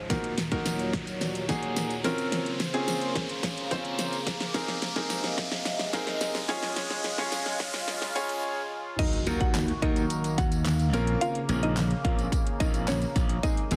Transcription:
Already playing: riser
0.10 analog synth pad D#2 A#2 F#3, grand piano A#3 D#4 F#4 A#4, kick, snare, closed hi-hat, tambourine
0.24 closed hi-hat
0.38 snare, closed hi-hat, tambourine
0.52 grand piano A#3 D#4 F#4 A#4, kick, closed hi-hat
0.66 snare, closed hi-hat, tambourine
0.79 closed hi-hat
0.93 kick, snare, closed hi-hat
1.07 closed hi-hat, tambourine
1.21 snare, closed hi-hat, tambourine
1.35 closed hi-hat, tambourine
1.49 grand piano A#3 D#4 F#4 G#4, kick, snare, closed hi-hat, tambourine
1.63 closed hi-hat
1.76 snare, closed hi-hat, tambourine
1.90 closed hi-hat, tambourine
2.04 analog synth pad C#3 A#3 C5, grand piano C4 C#4 F4 A#4, snare, closed hi-hat, tambourine
2.18 closed hi-hat, tambourine
2.32 snare, closed hi-hat, tambourine
2.46 closed hi-hat
2.60 snare, closed hi-hat, tambourine
2.74 grand piano C4 C#4 F4 G#4, closed hi-hat
2.88 snare, closed hi-hat, tambourine
3.01 closed hi-hat
3.15 kick, snare, closed hi-hat
3.29 closed hi-hat
3.43 kick, snare, closed hi-hat, tambourine
3.58 closed hi-hat
3.71 grand piano C4 C#4 F4 C5, kick, snare, closed hi-hat, tambourine
3.85 closed hi-hat
3.99 snare, closed hi-hat, tambourine
4.13 closed hi-hat, tambourine
4.27 kick, snare, closed hi-hat, tambourine
4.40 snare, closed hi-hat
4.54 analog synth pad C3 G#3, grand piano C4 D#4 G#4 A#4, kick, snare, closed hi-hat, tambourine
4.68 snare, closed hi-hat
4.82 snare, closed hi-hat, tambourine
4.96 grand piano C4 D#4 G#4 A#4, kick, snare, closed hi-hat
5.10 snare, closed hi-hat, tambourine
5.24 snare, closed hi-hat
5.38 kick, snare, closed hi-hat
5.52 snare, closed hi-hat
5.65 snare, closed hi-hat, tambourine
5.79 snare, closed hi-hat, tambourine
5.93 grand piano C4 D#4 G#4 A#4, kick, snare, closed hi-hat, tambourine
6.07 snare, closed hi-hat
6.21 snare, closed hi-hat, tambourine
6.35 snare, closed hi-hat, tambourine
6.48 analog synth pad C#3 F4, grand piano C#4 F4 G#4 C#5, snare, closed hi-hat, tambourine
6.63 snare, closed hi-hat
6.76 snare, closed hi-hat, tambourine
6.90 snare, closed hi-hat
7.04 snare, closed hi-hat, tambourine
7.18 grand piano C#4 F4 G#4 C#5, snare, closed hi-hat
7.32 snare, closed hi-hat, tambourine
7.46 snare, closed hi-hat
7.60 kick, snare, closed hi-hat
7.74 snare, closed hi-hat
7.88 snare, closed hi-hat, tambourine
8.02 snare, closed hi-hat
8.15 grand piano C#4 F4 G#4 C#5, closed hi-hat, tambourine
8.29 closed hi-hat
8.99 analog synth pad D#3 A#3 F#4, grand piano F#3 A#3 D#4 F#4 A#4, synth pluck D#4 D#5, kick, closed hi-hat, crash, tambourine, impact
9.13 closed hi-hat
9.27 slap bass D#2, grand piano F#3 A#3 D#4 F#4 A#4, closed hi-hat, tambourine
9.41 synth pluck F#4 F#5, kick, closed hi-hat
9.55 snare, clap, closed hi-hat, tambourine
9.68 closed hi-hat
9.82 slap bass D#2, grand piano F#3 A#3 D#4 F#4 A#4, synth pluck D#4 D#5, kick, closed hi-hat
9.96 closed hi-hat, tambourine
10.10 closed hi-hat, tambourine
10.24 closed hi-hat, tambourine
10.38 slap bass D#2, synth pluck F#4 F#5, kick, closed hi-hat, tambourine
10.52 closed hi-hat, tambourine
10.66 snare, clap, closed hi-hat, tambourine
10.79 closed hi-hat, tambourine
10.93 slap bass A#1, analog synth pad C#3, grand piano A#3 C4 C#4 F4 A#4, closed hi-hat, tambourine
11.07 closed hi-hat
11.21 synth pluck F4 F5, closed hi-hat, tambourine
11.35 closed hi-hat
11.49 slap bass A#1, grand piano A#3 C4 C#4 F4 A#4, closed hi-hat, tambourine
11.63 synth pluck D#4 D#5, closed hi-hat
11.77 snare, clap, closed hi-hat, tambourine
11.91 closed hi-hat
12.04 slap bass A#1, grand piano A#3 C4 C#4 F4 A#4, synth pluck F4 F5, kick, closed hi-hat
12.19 closed hi-hat, tambourine
12.32 kick, closed hi-hat, tambourine
12.47 closed hi-hat
12.60 slap bass A#1, grand piano A#3 C4 C#4 F4 A#4, synth pluck D#4 D#5, kick, closed hi-hat, tambourine
12.74 closed hi-hat, tambourine
12.88 synth pluck C#4 C#5, snare, clap, closed hi-hat, tambourine
13.02 closed hi-hat, tambourine
13.16 slap bass A#1, kick, closed hi-hat, tambourine
13.29 closed hi-hat
13.43 analog synth pad C3 G#3, grand piano G#3 A#3 C4 D#4 G#4, synth pluck D#4 D#5, kick, closed hi-hat, tambourine
13.57 closed hi-hat
13.71 slap bass G#1, grand piano G#3 A#3 C4 D#4 G#4, closed hi-hat, tambourine

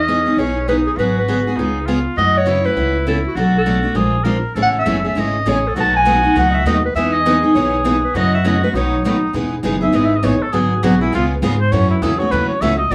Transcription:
Already playing: upright bass E2, oboe C#4, clarinet D#5
0.08 steel-string acoustic guitar E3 B3 D#4 G#4
0.26 steel-string acoustic guitar B3 D#4 G#4
0.37 upright bass B1, steel-string acoustic guitar E3 B3 D#4 G#4, clarinet C#5
0.68 steel-string acoustic guitar E3 B3 D#4 G#4, oboe D#4, clarinet B4
0.87 clarinet G#4
0.97 upright bass G#1, steel-string acoustic guitar D3 F#3 B3 F#4 G#4, oboe F#4, clarinet B4
1.19 clarinet B4
1.28 steel-string acoustic guitar D3 F#3 B3 F#4 G#4
1.47 steel-string acoustic guitar B3 F#4 G#4
1.57 upright bass C#2, steel-string acoustic guitar C#3 G#3 B3 F4 G#4, oboe D#4
1.86 steel-string acoustic guitar C#3 G#3 B3 F4 G#4, oboe F4
2.17 upright bass F#2, steel-string acoustic guitar C#3 E3 A3 C#4 F#4, oboe F#4, clarinet D#5
2.38 clarinet C#5
2.46 steel-string acoustic guitar C#3 E3 A3 C#4 F#4, oboe E4
2.64 steel-string acoustic guitar A3 C#4 F#4, clarinet B4
2.76 upright bass C#2, steel-string acoustic guitar C#3 E3 A3 C#4 F#4
3.07 steel-string acoustic guitar C#3 E3 A3 C#4 F#4, clarinet A4
3.27 clarinet F#4
3.35 upright bass B1, steel-string acoustic guitar B2 F#3 A3 D4 F#4, oboe F#4
3.39 clarinet A4
3.58 clarinet A4
3.66 steel-string acoustic guitar B2 F#3 A3 D4 F#4
3.83 steel-string acoustic guitar A3 D4 F#4
3.94 upright bass A#1, steel-string acoustic guitar F3 G#3 D4 F4 A#4, oboe G#4
4.24 steel-string acoustic guitar F3 G#3 D4 F4 A#4, oboe A#4
4.55 upright bass A1, steel-string acoustic guitar C#3 E3 G#3 A3 C#4 E4 G#4 A4, oboe A4
4.63 clarinet F#5
4.79 clarinet E5
4.85 upright bass F#1, steel-string acoustic guitar C#3 E3 G#3 A3 C#4 E4 G#4 A4
5.04 steel-string acoustic guitar A3 C#4 G#4, clarinet E5
5.15 upright bass G#1, steel-string acoustic guitar C#3 E3 G#3 A3 C#4 E4 G#4 A4
5.20 clarinet D#5
5.46 upright bass A1, steel-string acoustic guitar C#3 E3 G#3 A3 C#4 E4 G#4 A4, oboe G#4, clarinet C#5
5.68 clarinet A4
5.75 upright bass B1, steel-string acoustic guitar B2 D#3 F#3 A3 B3 D#4 F#4 A4, oboe F#4
5.80 clarinet A5
5.96 clarinet G#5
6.05 steel-string acoustic guitar B2 D#3 F#3 A3 B3 D#4 F#4 A4
6.23 steel-string acoustic guitar A3 D#4 F#4
6.35 upright bass C#2, steel-string acoustic guitar B2 D#3 F#3 A3 B3 D#4 F#4 A4, clarinet F#5
6.51 clarinet D#5 E5
6.64 upright bass D#2, steel-string acoustic guitar B2 D#3 F#3 A3 B3 D#4 F#4 A4, clarinet D#5
6.85 clarinet B4
6.95 upright bass E2, steel-string acoustic guitar E3 G#3 B3 D#4 G#4, oboe G#4, clarinet E5
7.13 clarinet D#5
7.26 steel-string acoustic guitar E3 G#3 B3 D#4 G#4
7.42 steel-string acoustic guitar B3 D#4 G#4
7.55 upright bass B1, steel-string acoustic guitar E3 G#3 B3 D#4 G#4, clarinet C#5
7.85 steel-string acoustic guitar E3 G#3 B3 D#4 G#4
8.04 clarinet B4
8.14 upright bass F#2, steel-string acoustic guitar C#3 E3 F#3 A3 C#4 E4 F#4 A4, oboe F#4, clarinet D#5
8.34 clarinet E5
8.44 steel-string acoustic guitar C#3 E3 F#3 A3 C#4 E4 F#4 A4, clarinet D#5
8.63 steel-string acoustic guitar A3 C#4 F#4, clarinet B4
8.73 upright bass B1, steel-string acoustic guitar B2 D#3 F#3 A3 B3 D#4 F#4 A4, oboe D#4, clarinet C#5
9.05 steel-string acoustic guitar B2 D#3 F#3 A3 B3 D#4 F#4 A4, oboe D#4
9.33 upright bass E1, steel-string acoustic guitar E3 G#3 B3 D#4 G#4
9.63 upright bass F#1, steel-string acoustic guitar E3 G#3 B3 D#4 G#4
9.81 steel-string acoustic guitar B3 D#4 G#4, oboe E5
9.93 upright bass G#1, steel-string acoustic guitar E3 G#3 B3 D#4 G#4, oboe D#5
10.05 oboe E5
10.15 oboe D#5
10.23 upright bass A1, steel-string acoustic guitar E3 G#3 B3 D#4 G#4, oboe C#5
10.41 oboe A4, muted upright bass stroke
10.53 upright bass G#1, steel-string acoustic guitar D3 F#3 B3 F#4 G#4, oboe G#4
10.83 upright bass B1, steel-string acoustic guitar D3 F#3 B3 F#4 G#4, oboe F#4
11.01 steel-string acoustic guitar B3 F#4 G#4, oboe E4
11.13 upright bass C#2, steel-string acoustic guitar C#3 G#3 B3 F4 G#4, oboe F4
11.42 upright bass G#2, steel-string acoustic guitar C#3 G#3 B3 F4 G#4
11.61 oboe C5
11.72 upright bass F#2, steel-string acoustic guitar C#3 E3 F#3 A3 C#4 E4 F#4 A4, oboe C#5
11.90 oboe E4
12.02 upright bass E2, steel-string acoustic guitar C#3 E3 F#3 A3 C#4 E4 F#4 A4, oboe G#4
12.19 steel-string acoustic guitar A3 C#4 F#4, oboe C#5
12.31 upright bass D#2, steel-string acoustic guitar C#3 E3 F#3 A3 C#4 E4 F#4 A4, oboe B4
12.48 oboe C#5, muted upright bass stroke
12.61 upright bass C#2, steel-string acoustic guitar C#3 E3 F#3 A3 C#4 E4 F#4 A4, oboe E5
12.78 oboe D#5
12.91 upright bass B1, steel-string acoustic guitar B2 F#3 A3 D4 F#4, oboe D5

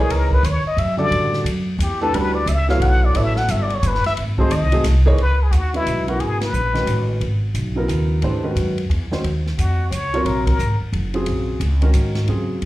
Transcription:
Already playing: grand piano E3 A#3 D#4
0.00 muted trumpet G#4, grand piano G#4 C#5
0.09 upright bass C#2, muted trumpet A#4, ride
0.31 muted trumpet B4, kick
0.43 upright bass D#2, muted trumpet C#5, hi-hat pedal, ride
0.65 muted trumpet D#5, muted upright bass stroke
0.77 upright bass F#2, muted trumpet E5, ride
0.97 grand piano C#3 D3 G3 F#4 A4, muted trumpet D5
1.10 upright bass A2, ride
1.33 snare
1.44 upright bass F#2, hi-hat pedal, ride
1.78 upright bass E2, hi-hat pedal, ride
1.83 muted trumpet G4
2.01 grand piano E3 A3 D4 G4 B4, muted trumpet A4
2.13 upright bass D2, grand piano G3 C#4 F#4 B4 D5, muted trumpet B4, ride
2.35 muted trumpet D5
2.46 upright bass C#2, muted trumpet E5, hi-hat pedal, ride
2.69 grand piano F#3 B3 E4 A4 C#5, muted trumpet F5, snare
2.80 upright bass B1, muted trumpet F#5, ride
3.05 muted trumpet D5
3.14 upright bass A1, grand piano F#3 B3 E4 A4 C#5, muted trumpet E5, ride
3.36 muted trumpet F#5, snare
3.48 upright bass G1, muted trumpet E5, hi-hat pedal, ride
3.62 muted trumpet D5
3.70 ride
3.75 muted trumpet C#5
3.83 upright bass F#1, hi-hat pedal, ride
3.87 muted trumpet B4
3.95 snare
4.04 muted trumpet E5, muted upright bass stroke, snare, ride
4.17 upright bass G#1, ride
4.38 grand piano F#3 A3 C4 D#4 G#4, muted trumpet C5, kick
4.50 upright bass D#2, muted trumpet D#5, hi-hat pedal, ride
4.62 upright bass C2
4.72 upright bass G#1, grand piano F#3 A3 C4 D#4 G#4, ride
4.84 upright bass C2, snare, hi-hat pedal, ride
5.06 grand piano E3 A#3 D#4 G#4 C#5, kick
5.18 upright bass C#2, muted trumpet B4, ride
5.43 muted trumpet G#4
5.51 upright bass D#2, muted trumpet F#4, hi-hat pedal, ride
5.74 grand piano E3 G#3 C#4 F#4 B4, muted trumpet E4, ride
5.87 upright bass B1, hi-hat pedal, ride
6.07 grand piano C#3 F#3 B3 E4 A#4, muted trumpet F#4, ride
6.20 upright bass G#1, muted trumpet G#4, ride
6.41 muted trumpet B4, snare, ride
6.53 upright bass A#1, hi-hat pedal
6.74 grand piano D#3 G#3 C#4 F#4 B4, snare, ride
6.86 upright bass A1, hi-hat pedal, ride
7.20 upright bass G#1, ride
7.54 upright bass B1, hi-hat pedal, ride
7.75 grand piano C#3 F#3 B3 E4 A#4
7.88 upright bass D#2, hi-hat pedal, ride
8.22 upright bass G#2, grand piano E3 A3 D4 G4 C5, ride
8.43 grand piano D#3 G#3 C#4 F#4 B4
8.55 upright bass F#2, hi-hat pedal, ride
8.78 ride
8.89 upright bass E2, ride
9.11 grand piano D#3 G#3 C#4 F#4 C5, muted upright bass stroke, snare
9.24 upright bass D#2, ride
9.46 snare
9.58 upright bass F2, muted trumpet F#4, hi-hat pedal, ride
9.91 upright bass C#2, muted trumpet C#5, hi-hat pedal, ride
10.14 grand piano C3 F#3 F4 A#4 C#5, ride
10.25 upright bass A#1, muted trumpet A#4, ride
10.47 muted trumpet A#4, kick, ride
10.59 upright bass G#1, hi-hat pedal
10.81 muted upright bass stroke
10.92 upright bass F#1, ride
11.14 grand piano C#3 F#3 C4 F4 G#4, ride
11.26 upright bass A#1, ride
11.60 upright bass C#2, hi-hat pedal, ride
11.81 grand piano D#3 G#3 C#4 F#4 A#4, ride
11.94 upright bass G#2, hi-hat pedal, ride
12.15 snare, ride
12.28 upright bass F#2, grand piano C#3 F#3 C4 F4 G#4, ride
12.62 upright bass F2, ride

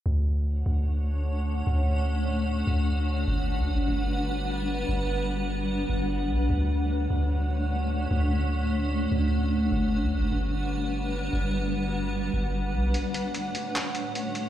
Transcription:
0.06 808-style bass D2, ambient pad A3 D4 C#5 F#5
0.66 808-style bass D2
1.67 808-style bass D2
2.67 808-style bass D2
3.28 808-style bass G1, ambient pad G3 B4
3.58 808-style bass D2
3.73 808-style bass G1
3.88 808-style bass G1
4.89 808-style bass G1
5.90 808-style bass G1
6.30 808-style bass B1
6.50 808-style bass D2, ambient pad A3 D4 C#5
7.10 808-style bass D2
8.11 808-style bass D2
9.12 808-style bass D2
9.72 808-style bass G1, ambient pad G3 B4 F#5
10.02 808-style bass D2
10.17 808-style bass G1
10.33 808-style bass G1
11.33 808-style bass G1
12.34 808-style bass G1
12.74 808-style bass B1
12.94 ambient pad A3 D4 C#5, closed hi-hat
13.14 closed hi-hat
13.34 closed hi-hat
13.55 closed hi-hat
13.75 clap, closed hi-hat
13.95 closed hi-hat
14.15 closed hi-hat
14.35 closed hi-hat

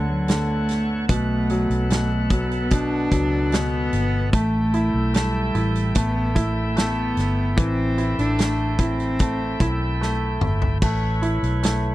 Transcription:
Already playing: fingered electric bass D2, grand piano D3, cello A3, tonewheel organ B3 A4 C#5 F#5
0.09 cello F#3
0.28 grand piano D3, cello A3, snare, closed hi-hat
0.69 snare, closed hi-hat
1.08 fingered electric bass B1, grand piano B2, cello A3, tonewheel organ B4 F#5, kick, closed hi-hat
1.50 grand piano F#3, closed hi-hat
1.70 fingered electric bass B1, closed hi-hat
1.90 grand piano B2, cello A3, snare, closed hi-hat
2.30 grand piano F#3, cello B3, kick, closed hi-hat
2.51 closed hi-hat
2.70 grand piano B2, cello D4, kick, closed hi-hat
3.12 fingered electric bass C#2, grand piano F#3, kick, closed hi-hat
3.52 grand piano B2, cello B3, snare, closed hi-hat
3.93 fingered electric bass G1, closed hi-hat
4.33 fingered electric bass A1, grand piano A3, cello A3, tonewheel organ E4 E5 G5, kick, closed hi-hat
4.74 grand piano E4, closed hi-hat
4.94 fingered electric bass B1
5.14 cello G3, grand piano A3, snare, closed hi-hat
5.55 fingered electric bass A1, grand piano E4, closed hi-hat
5.75 closed hi-hat
5.95 fingered electric bass A1, grand piano A3, cello B3, kick, closed hi-hat
6.35 cello A3, grand piano E4, kick, closed hi-hat
6.77 grand piano A3, cello B3, snare, closed hi-hat
7.17 fingered electric bass G1, snare, closed hi-hat
7.57 fingered electric bass A1, grand piano E3, cello C4, kick, closed hi-hat
7.98 grand piano E4, closed hi-hat
8.18 fingered electric bass A1, cello D4, closed hi-hat
8.39 grand piano A3, snare, closed hi-hat
8.79 cello C4, grand piano E4, kick, closed hi-hat
9.00 closed hi-hat
9.19 grand piano A3, kick, closed hi-hat
9.60 fingered electric bass B1, grand piano E4, kick, closed hi-hat
10.01 grand piano A3, snare
10.41 fingered electric bass G1, mid tom
10.62 floor tom
10.82 fingered electric bass A1, grand piano A3, tonewheel organ A3 E4 B4 C#5, kick, crash
11.22 grand piano E4, closed hi-hat
11.43 fingered electric bass B1, closed hi-hat
11.63 grand piano A3, snare, closed hi-hat

